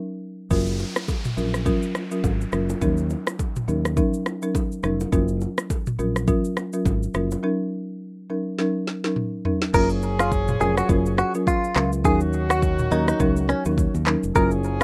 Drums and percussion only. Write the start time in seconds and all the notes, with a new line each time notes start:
0.51 kick, low conga, shaker
0.66 shaker
0.79 low bongo, shaker
0.96 cross-stick, low bongo, shaker
1.08 kick, high bongo, shaker
1.25 mid tom, shaker
1.37 shaker
1.54 cross-stick, high bongo, shaker
1.66 kick, low conga, shaker
1.83 shaker
1.95 cross-stick, low bongo, shaker
2.11 shaker
2.24 kick, high bongo, shaker
2.41 shaker
2.52 cross-stick, low conga, shaker
2.69 high bongo, low bongo, shaker
2.82 kick, low conga, shaker
2.97 shaker
3.10 low bongo, shaker
3.27 cross-stick, low bongo, shaker
3.39 kick, high bongo, shaker
3.56 mid tom, shaker
3.69 shaker
3.85 cross-stick, high bongo, shaker
3.97 kick, low conga, shaker
4.14 shaker
4.26 cross-stick, low bongo, shaker
4.42 shaker
4.55 kick, high bongo, shaker
4.72 shaker
4.83 cross-stick, low conga, shaker
5.00 high bongo, low bongo, shaker
5.12 kick, low conga, shaker
5.28 shaker
5.41 low bongo, shaker
5.58 cross-stick, low bongo, shaker
5.70 kick, high bongo, shaker
5.87 mid tom, shaker
5.99 shaker
6.16 cross-stick, high bongo, shaker
6.28 kick, low conga, shaker
6.45 shaker
6.57 cross-stick, low bongo, shaker
6.73 shaker
6.85 kick, high bongo, shaker
7.03 shaker
7.14 cross-stick, low conga, shaker
7.31 high bongo, low bongo, shaker
8.59 snare
8.87 snare
9.04 snare
9.16 mid tom
9.45 floor tom
9.62 snare
9.74 kick, crash, shaker
9.90 shaker
10.02 shaker
10.19 cross-stick, shaker
10.32 kick, shaker
10.48 mid tom, shaker
10.61 shaker
10.77 cross-stick, shaker
10.89 kick, shaker
11.06 shaker
11.18 cross-stick, shaker
11.34 shaker
11.47 kick, shaker
11.64 shaker
11.75 cross-stick, clap, shaker
11.93 shaker
12.05 kick, shaker
12.20 shaker
12.33 shaker
12.50 cross-stick, shaker
12.62 kick, shaker
12.79 mid tom, shaker
12.92 shaker
13.08 cross-stick, shaker
13.20 kick, shaker
13.37 shaker
13.49 cross-stick, shaker
13.65 shaker
13.78 kick, shaker
13.95 shaker
14.06 cross-stick, clap, shaker
14.23 shaker
14.35 kick, shaker
14.51 shaker
14.64 shaker